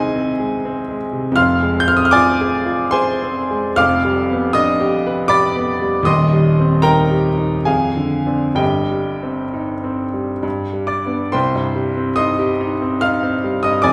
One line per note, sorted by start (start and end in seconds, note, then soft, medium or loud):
0.00 1.33 C2 medium
0.00 0.40 G#3 soft
0.00 0.15 C4 soft
0.00 0.30 D#4 medium
0.00 0.96 G#4 medium
0.00 1.40 C5 medium
0.00 0.96 D#5 medium
0.00 1.40 G#5 medium
0.00 1.37 C6 medium
0.15 0.54 C4 soft
0.40 0.79 G#3 soft
0.65 1.04 C4 medium
0.89 1.28 G#3 soft
1.13 1.38 C3 soft
1.32 3.71 F2 medium
1.36 3.74 F1 medium
1.36 1.76 F5 medium
1.36 1.76 C6 medium
1.36 1.79 F6 loud
1.63 2.04 G#3 medium
1.80 1.88 G6 medium
1.88 2.29 C4 medium
1.88 1.97 F6 loud
1.97 2.05 D#6 medium
2.05 2.14 F6 medium
2.11 2.56 F4 medium
2.11 2.88 D5 medium
2.11 2.88 G#5 medium
2.11 2.92 D6 loud
2.41 2.83 G#4 medium
2.66 3.09 F4 soft
2.91 3.38 G#4 medium
2.91 3.74 C5 medium
2.91 3.74 G#5 medium
2.91 3.77 C6 loud
3.22 3.68 C4 medium
3.51 3.79 G#3 medium
3.76 6.04 F1 medium
3.76 6.04 F2 medium
3.76 4.51 F5 medium
3.76 4.51 D6 medium
3.76 4.54 F6 loud
4.05 4.45 G3 medium
4.31 4.71 B3 medium
4.53 4.95 D4 medium
4.53 5.27 D#5 medium
4.53 5.30 D#6 loud
4.80 5.21 G4 medium
5.06 5.47 B4 medium
5.28 5.72 G4 medium
5.28 6.03 D5 medium
5.28 6.03 B5 medium
5.28 6.07 D6 loud
5.56 5.98 B3 medium
5.82 6.08 G3 medium
6.03 7.63 D#1 medium
6.03 7.61 D#2 medium
6.03 6.80 D#5 medium
6.03 6.80 C6 medium
6.03 6.84 D#6 loud
6.33 6.75 G3 medium
6.59 7.01 C4 medium
6.82 7.28 D#4 medium
6.82 7.63 A#4 medium
6.82 7.63 G5 medium
6.82 7.66 A#5 loud
7.11 7.56 G4 medium
7.38 7.67 D#4 soft
7.65 8.58 F2 medium
7.65 8.56 G#4 medium
7.65 8.56 F5 medium
7.65 8.59 G#5 medium
7.97 8.47 D3 soft
8.26 8.56 C4 soft
8.26 8.56 D4 soft
8.55 10.39 G1 soft
8.55 10.38 G2 medium
8.55 10.84 G4 medium
8.55 10.84 D#5 medium
8.55 10.87 G5 medium
8.91 9.42 G3 soft
9.23 9.73 C4 soft
9.54 10.03 D#4 soft
9.84 10.32 C4 soft
10.14 10.44 G3 soft
10.43 11.31 G2 medium
10.73 11.22 G3 soft
10.87 11.30 D5 medium
10.87 11.33 D6 medium
11.06 11.32 B3 soft
11.06 11.32 D4 soft
11.32 13.79 C2 medium
11.32 12.14 C5 medium
11.32 12.14 G5 medium
11.32 12.15 C6 medium
11.55 11.89 G2 medium
11.76 12.10 G3 soft
11.97 12.31 C4 soft
12.16 12.51 D#4 soft
12.16 12.96 D#5 medium
12.16 12.97 C6 medium
12.16 13.00 D#6 loud
12.39 12.72 G4 medium
12.61 12.94 D#4 medium
12.82 13.14 C4 soft
13.01 13.35 D#4 medium
13.01 13.59 F5 medium
13.01 13.63 F6 loud
13.23 13.55 C4 medium
13.44 13.75 G3 medium
13.63 13.83 G2 soft
13.63 13.82 D#5 medium
13.63 13.83 D#6 medium
13.82 13.93 F1 medium
13.82 13.93 F2 medium
13.82 13.93 D5 medium
13.82 13.93 G#5 medium
13.82 13.93 D6 medium